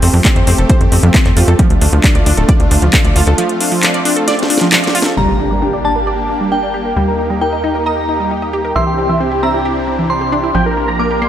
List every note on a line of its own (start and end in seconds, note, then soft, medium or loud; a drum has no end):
0.00 0.10 F2 loud
0.00 5.13 A3 medium
0.00 1.56 C4 medium
0.00 0.11 C4 medium
0.00 1.57 G4 medium
0.00 open hi-hat loud
0.14 0.21 F2 medium
0.14 0.20 F3 medium
0.14 open hi-hat medium
0.25 0.28 C4 medium
0.25 kick loud
0.25 clap loud
0.25 closed hi-hat medium
0.36 0.43 F2 medium
0.36 0.45 C5 medium
0.36 closed hi-hat soft
0.47 0.54 F2 loud
0.47 0.53 C4 loud
0.47 open hi-hat loud
0.58 0.66 F1 medium
0.58 0.64 A4 medium
0.58 closed hi-hat soft
0.70 0.79 C5 loud
0.70 kick loud
0.70 closed hi-hat medium
0.81 0.88 F2 medium
0.81 closed hi-hat soft
0.92 0.99 F2 loud
0.92 1.01 C4 medium
0.92 open hi-hat loud
1.03 1.10 F2 loud
1.03 1.09 F3 medium
1.03 closed hi-hat soft
1.14 1.18 C4 medium
1.14 kick loud
1.14 clap loud
1.14 closed hi-hat medium
1.25 1.33 F2 medium
1.25 1.35 C5 medium
1.25 clap soft
1.25 closed hi-hat soft
1.37 1.44 F2 loud
1.37 1.40 F4 loud
1.37 open hi-hat loud
1.48 1.55 F2 medium
1.48 1.54 A4 medium
1.48 closed hi-hat soft
1.59 1.68 F3 loud
1.59 3.37 D4 medium
1.59 5.14 F4 medium
1.59 kick loud
1.59 closed hi-hat medium
1.70 1.77 D2 medium
1.70 closed hi-hat soft
1.81 1.89 D2 loud
1.81 1.90 D4 medium
1.81 open hi-hat loud
1.93 2.00 D2 loud
1.93 1.99 F3 medium
1.93 closed hi-hat soft
2.04 2.07 D4 medium
2.04 kick loud
2.04 clap loud
2.04 closed hi-hat medium
2.15 2.22 D2 medium
2.15 2.24 D5 medium
2.15 closed hi-hat soft
2.26 2.33 D2 medium
2.26 2.32 D4 loud
2.26 open hi-hat loud
2.37 2.45 D1 medium
2.37 2.43 A4 medium
2.37 closed hi-hat soft
2.49 2.58 D5 loud
2.49 kick loud
2.49 closed hi-hat medium
2.60 2.67 D2 medium
2.60 closed hi-hat soft
2.71 2.78 D2 loud
2.71 2.80 D4 medium
2.71 open hi-hat loud
2.82 2.89 D2 loud
2.82 2.88 F3 medium
2.82 closed hi-hat soft
2.93 2.97 D4 medium
2.93 kick loud
2.93 clap loud
2.93 closed hi-hat loud
3.05 3.12 D2 medium
3.05 3.14 D5 medium
3.05 closed hi-hat soft
3.16 3.23 D2 loud
3.16 3.19 F4 loud
3.16 open hi-hat loud
3.27 3.34 D2 medium
3.27 3.33 A4 medium
3.27 closed hi-hat soft
3.38 3.47 F3 loud
3.38 5.16 C4 medium
3.38 closed hi-hat loud
3.49 closed hi-hat soft
3.60 3.70 D4 medium
3.60 open hi-hat loud
3.72 3.78 F3 medium
3.72 open hi-hat medium
3.83 3.87 D4 medium
3.83 clap loud
3.83 closed hi-hat medium
3.94 4.03 D5 medium
3.94 closed hi-hat soft
4.05 4.11 D4 loud
4.05 open hi-hat loud
4.16 4.23 A4 medium
4.16 closed hi-hat soft
4.28 4.37 D5 loud
4.28 snare medium
4.28 closed hi-hat loud
4.39 snare medium
4.39 closed hi-hat soft
4.50 4.59 D4 medium
4.50 open hi-hat loud
4.58 4.67 F3 medium
4.58 snare medium
4.58 closed hi-hat soft
4.72 4.76 D4 medium
4.72 snare medium
4.72 clap loud
4.72 closed hi-hat medium
4.84 4.93 D5 medium
4.84 snare medium
4.84 closed hi-hat soft
4.95 4.98 F4 loud
4.95 open hi-hat loud
5.02 5.12 A4 medium
5.02 snare loud
5.02 closed hi-hat soft
5.17 6.94 G1 medium
5.17 5.26 G3 loud
5.17 8.72 A#3 medium
5.17 6.95 D4 medium
5.17 11.29 G4 medium
5.17 5.27 D5 loud
5.17 5.76 A#5 medium
5.17 5.27 D6 medium
5.17 impact medium
5.28 5.38 G4 medium
5.28 5.38 G5 medium
5.40 5.49 D4 medium
5.40 5.50 G4 medium
5.40 5.49 G5 medium
5.51 5.57 G3 medium
5.51 5.61 D5 medium
5.51 5.61 D6 medium
5.62 5.66 D4 medium
5.62 5.72 G4 medium
5.62 5.72 G5 medium
5.62 closed hi-hat medium
5.73 5.83 G4 medium
5.73 5.82 D5 medium
5.73 5.83 G5 medium
5.73 closed hi-hat soft
5.84 5.90 D4 loud
5.84 5.94 D5 medium
5.84 6.43 A5 medium
5.84 5.94 D6 medium
5.84 closed hi-hat medium
5.96 6.05 G4 medium
5.96 6.02 A#4 medium
5.96 6.05 G5 medium
5.96 closed hi-hat soft
6.07 6.17 G4 medium
6.07 6.16 D5 medium
6.07 6.17 G5 medium
6.07 closed hi-hat medium
6.29 6.38 D4 medium
6.29 closed hi-hat medium
6.41 6.46 G3 medium
6.41 closed hi-hat soft
6.52 6.55 D4 medium
6.52 7.32 G5 medium
6.52 closed hi-hat medium
6.63 6.72 D5 medium
6.63 closed hi-hat soft
6.74 6.78 G4 loud
6.74 closed hi-hat medium
6.85 6.91 A#4 medium
6.85 closed hi-hat soft
6.96 8.73 D#2 medium
6.96 7.05 G3 loud
6.96 8.74 D#4 medium
6.96 7.06 G5 loud
6.96 7.06 G6 medium
6.96 closed hi-hat medium
7.08 7.17 A#4 medium
7.08 7.17 A#5 medium
7.08 closed hi-hat soft
7.19 7.28 D#4 medium
7.19 7.29 A#4 medium
7.19 7.29 A#5 medium
7.19 closed hi-hat soft
7.30 7.36 G3 medium
7.30 7.40 A#5 loud
7.30 7.40 A#6 medium
7.30 closed hi-hat soft
7.41 7.45 D#4 medium
7.41 7.51 A#4 medium
7.41 7.84 G5 medium
7.41 7.51 A#5 medium
7.41 closed hi-hat medium
7.52 7.62 A#4 medium
7.52 7.61 D#5 medium
7.52 7.62 A#5 medium
7.63 7.70 D#4 loud
7.63 7.73 A#5 medium
7.63 7.73 A#6 medium
7.63 closed hi-hat medium
7.75 7.85 A#4 medium
7.75 7.81 A#4 medium
7.75 7.84 A#5 medium
7.75 closed hi-hat soft
7.86 7.96 A#4 medium
7.86 7.95 D#5 loud
7.86 7.96 A#5 medium
7.86 8.67 A#5 medium
7.86 closed hi-hat medium
7.97 closed hi-hat soft
8.09 8.18 D#4 medium
8.09 closed hi-hat medium
8.20 8.26 G3 medium
8.20 closed hi-hat soft
8.31 8.35 D#4 medium
8.31 closed hi-hat medium
8.42 8.51 D#5 medium
8.42 closed hi-hat soft
8.53 8.57 G4 loud
8.53 closed hi-hat medium
8.65 8.70 A#4 medium
8.65 closed hi-hat soft
8.76 10.52 C2 medium
8.76 10.53 C3 medium
8.76 8.85 E3 loud
8.76 10.53 C4 medium
8.76 11.29 D4 medium
8.76 10.53 E4 medium
8.76 8.85 E5 loud
8.76 9.34 C6 medium
8.76 8.85 E6 medium
8.76 closed hi-hat medium
8.87 8.96 G4 medium
8.87 8.97 G5 medium
8.87 closed hi-hat soft
8.98 9.07 C4 medium
8.98 9.08 G4 medium
8.98 9.08 G5 medium
8.98 closed hi-hat soft
9.09 9.15 E3 medium
9.09 9.19 E5 loud
9.09 9.19 E6 medium
9.09 closed hi-hat soft
9.20 9.24 C4 medium
9.20 9.30 G4 medium
9.20 9.30 G5 medium
9.20 closed hi-hat medium
9.31 9.41 G4 medium
9.31 9.41 G5 medium
9.31 closed hi-hat soft
9.42 9.49 C4 loud
9.42 9.52 E5 medium
9.42 10.01 A#5 medium
9.42 9.52 E6 medium
9.42 closed hi-hat medium
9.54 9.60 E4 medium
9.54 9.64 G4 medium
9.54 9.63 G5 medium
9.54 closed hi-hat soft
9.65 9.75 G4 medium
9.65 9.74 G4 loud
9.65 9.75 G5 medium
9.65 closed hi-hat medium
9.76 closed hi-hat soft
9.88 9.96 C4 medium
9.88 closed hi-hat medium
9.99 10.05 E3 medium
9.99 closed hi-hat soft
10.10 10.13 C4 medium
10.10 10.90 C6 medium
10.10 closed hi-hat medium
10.21 10.30 G4 medium
10.21 closed hi-hat soft
10.32 10.36 D4 medium
10.32 closed hi-hat medium
10.44 10.49 E4 medium
10.44 closed hi-hat soft
10.55 11.29 A#1 medium
10.55 10.64 F3 loud
10.55 11.29 A#3 medium
10.55 10.64 G5 loud
10.55 10.64 G6 medium
10.55 closed hi-hat medium
10.66 10.76 A#4 medium
10.66 10.75 A#5 medium
10.66 closed hi-hat soft
10.77 10.86 A#3 medium
10.77 10.87 A#4 medium
10.77 10.87 A#5 medium
10.77 closed hi-hat soft
10.88 10.94 F3 medium
10.88 10.98 A#5 loud
10.88 10.98 A#6 medium
10.88 closed hi-hat soft
10.99 11.03 A#3 medium
10.99 11.09 A#4 medium
10.99 11.09 A#5 medium
10.99 11.29 D6 medium
10.99 closed hi-hat medium
11.10 11.20 G4 medium
11.10 11.20 A#4 medium
11.10 11.20 A#5 medium
11.10 closed hi-hat soft
11.22 11.28 A#3 medium
11.22 11.29 C6 medium
11.22 11.29 C7 medium
11.22 closed hi-hat medium